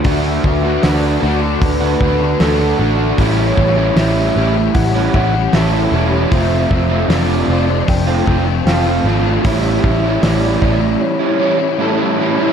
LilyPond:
<<
  \new Staff \with { instrumentName = "Soft synth lead" } { \time 4/4 \key a \mixolydian \tempo 4 = 77 e''4 d''4 b'4 a'8. r16 | cis''4 e''4 fis''4 e''8. r16 | e''4 d''4 g''4 f''8. r16 | e''4 d''4 cis''4. r8 | }
  \new Staff \with { instrumentName = "Clean electric guitar" } { \time 4/4 \key a \mixolydian fis8 b8 d'8 fis8 d'8 b8 a'8 d'8 | g8 cis'8 e'8 g8 e'8 cis'8 a'8 e'8 | c'8 c'8 d'8 c'8 d'8 c'8 a'8 d'8 | g8 cis'8 e'8 g8 e'8 cis'8 a'8 e'8 | }
  \new Staff \with { instrumentName = "Overdriven electric guitar" } { \time 4/4 \key a \mixolydian <d a d' fis'>8 <d a d' fis'>16 <a d' fis'>16 <d a d' fis'>8 <d a d' fis'>16 <a d' fis'>8. <d a d' fis'>16 <a d' fis'>16 <d a d' fis'>8 <d a d' fis'>16 <a d' fis'>16 | <a, e g cis' g'>8 <e g cis' g'>16 <g cis' g'>16 <a, e g cis' g'>8 <e g cis' g'>16 <g cis' g'>8. <e g cis' g'>16 <g cis' g'>16 <a, e g cis' g'>8 <e g cis' g'>16 <g cis' g'>16 | <f a c' f'>8 <f a c' f'>16 <a c' f'>16 <f a c' f'>8 <f a c' f'>16 <a c' f'>8. <f a c' f'>16 <a c' f'>16 <f a c' f'>8 <f a c' f'>16 <a c' f'>16 | <a, e g cis' e'>8 <e g cis' e'>16 <g cis' e'>16 <a, e g cis' e'>8 <e g cis' e'>16 <g cis' e'>8. <e g cis' e'>16 <g cis' e'>16 <a, e g cis' e'>8 <e g cis' e'>16 <g cis' e'>16 | }
  \new Staff \with { instrumentName = "Overdriven electric guitar" } { \time 4/4 \key a \mixolydian <d a d' fis'>8. <a d' fis'>16 <d a d' fis'>8 <d a d' fis'>8. <a d' fis'>16 <d a d' fis'>8 <d a d' fis'>16 <a d' fis'>16 <d a d' fis'>8 | <a, e g cis' e'>8. <g cis' e'>16 <a, e g cis' e'>8 <e g cis' e'>8. <g cis' e'>16 <e g cis' e'>8 <a, e g cis' e'>16 <g cis' e'>16 <e g cis' e'>8 | <f, c f a c' f'>8. <f a c' f'>16 <f, c f a c' f'>8 <f a c' f'>8. <f a c' f'>16 <f a c' f'>8 <f, c f a c' f'>16 <f a c' f'>16 <f a c' f'>8 | <a, e g cis' e'>8. <g cis' e'>16 <a, e g cis' e'>8 <e g cis' e'>8. <g cis' e'>16 <e g cis' e'>8 <a, e g cis' e'>16 <g cis' e'>16 <e g cis' e'>8 | }
  \new Staff \with { instrumentName = "Picked electric bass" } { \clef bass \time 4/4 \key a \mixolydian d,8 d,8 d,8 d,8 d,8 d,8 d,8 a,,8 | a,,8 a,,8 a,,8 a,,8 a,,8 a,,8 a,,8 e,,8 | f,,8 f,,8 f,,8 f,,8 f,,8 f,,8 f,,8 gis,,8 | a,,8 a,,8 a,,8 a,,8 r2 | }
  \new DrumStaff \with { instrumentName = "Drums" } \drummode { \time 4/4 <hho bd>8 bd8 <hho sn>4 <hho bd>8 bd8 <hho sn>4 | <hho bd>8 bd8 <hho sn>4 <hho bd>8 bd8 <hho sn>4 | <hho bd>8 bd8 <hho sn>4 <hho bd>8 bd8 <hho sn>4 | <hho bd>8 bd8 <hho sn>8 bd8 r4 r4 | }
>>